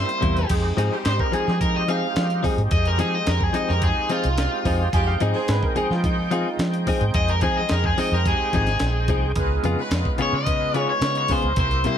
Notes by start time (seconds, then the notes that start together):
Already playing: G3 A#3 C4 E4 C5
0.09 closed hi-hat
0.21 E2 C3 G3 A#3 E4, kick, closed hi-hat
0.37 closed hi-hat
0.49 F2 G#3 C4 D#4 F4 G4 G#4, kick, closed hi-hat, crash
0.77 G#2 F3 C4 D#4 G#4, closed hi-hat
0.91 G3 D#4 F4 G4
1.05 G#2 C5, snare, closed hi-hat
1.19 A#4, kick
1.32 F3 C4 D#4 G#4, muted fingered electric bass stroke, closed hi-hat
1.48 F3, snare
1.61 F3 D#4 F4 A#4, kick, closed hi-hat
1.76 D#5
1.88 F3 C4 D#4 G#4 F5, closed hi-hat
2.16 F3, snare, closed hi-hat
2.30 closed hi-hat
2.43 F3 C4 D#4 G#4, kick, open hi-hat
2.58 G#2, closed hi-hat
2.71 F2 G#3 D#4 F4 G#4 D#5, kick, closed hi-hat
2.85 A#4, closed hi-hat
2.98 F3 C4 D#4 G#4, closed hi-hat
3.12 F3 G#3 D#4 F4 D#5
3.27 F2 A#4, snare, closed hi-hat
3.41 G#4, kick
3.53 F3 C4 D#4 G#4 D#5, closed hi-hat
3.69 F2 A#4, snare
3.82 F3 D#4 F4 G#4, kick, closed hi-hat
4.09 F3 C4 D#4 F4 G#4, closed hi-hat
4.24 C2, closed hi-hat
4.38 snare, closed hi-hat
4.65 F2 F3 C4 D#4 G#4, kick, open hi-hat
4.92 F2 G3 G#3 C4 D#4 F4 G4 G5 G#5, kick, closed hi-hat
5.07 F5
5.20 G#2 F3 C4 D#4 G#4 D#5, closed hi-hat
5.33 G#3 D#4 F4 G#4 C5
5.48 G#2 B4, snare, closed hi-hat
5.63 A#4, kick
5.76 F3 C4 D#4 G#4, muted fingered electric bass stroke, closed hi-hat
5.91 F3 F4, snare
6.03 F3 D#4 F4, kick, closed hi-hat
6.31 F3 C4 D#4 F4 G#4, closed hi-hat
6.59 F3, snare, closed hi-hat
6.74 closed hi-hat
6.87 F3 C4 D#4 G#4, kick, open hi-hat
7.01 G#2, closed hi-hat
7.13 F2 G#3 D#4 F4 G#4 D#5, kick, closed hi-hat
7.28 A#4, closed hi-hat
7.41 F3 C4 D#4 G#4, kick, closed hi-hat
7.57 G#3 D#4 F4 G#4 D#5
7.69 F2 A#4, snare, closed hi-hat
7.84 G#4, kick
7.98 F3 C4 D#4 G#4 D#5, open hi-hat
8.12 F2 A#4
8.26 G3 D#4 F4 G4 G#4, kick, closed hi-hat
8.53 G#1 F3 C4 D#4 G#4, kick, closed hi-hat
8.67 snare, closed hi-hat
8.79 A#1, snare, closed hi-hat
9.08 C2 F3 C4 D#4 G#4, kick, closed hi-hat
9.36 C#2 G#3 B3 C#4 D#4 F4 B4, kick, closed hi-hat
9.64 F2 C#3 B3 F4 G#4, closed hi-hat
9.77 B3 C#4 F4 B4
9.91 F2, snare, closed hi-hat
10.05 kick
10.18 C#3 B3 F4 G#4 C#5, muted fingered electric bass stroke, closed hi-hat
10.33 C#3 D#5
10.44 B3 C#4 F4 B4, kick, closed hi-hat
10.74 C#3 B3 F4 G#4, closed hi-hat
10.90 C#5
11.01 C#3, snare, closed hi-hat
11.15 C#5, closed hi-hat
11.28 C#3 B3 F4 G#4 C5, kick, open hi-hat
11.42 C#2, closed hi-hat
11.56 C2 A#3 C4 E4 G4 A#4 C5, kick, closed hi-hat
11.71 closed hi-hat
11.84 C3 G3 A#3 E4 C5, closed hi-hat